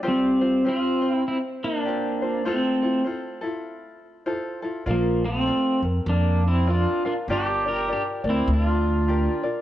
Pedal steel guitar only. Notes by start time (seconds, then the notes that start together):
0.08 G3 C4
0.69 C4 F4
1.12 E4
1.28 C4 E4
1.64 A#3 D4
2.46 A3 C4
4.90 F3 A#3
5.25 A3 C4
6.09 A#3 D4
6.48 C4 E4
6.70 D4 F4
7.06 D4 F4
7.32 D4 G4
7.68 G4 A#4
7.93 D4 G4
8.29 C4 E4
8.53 D4 F4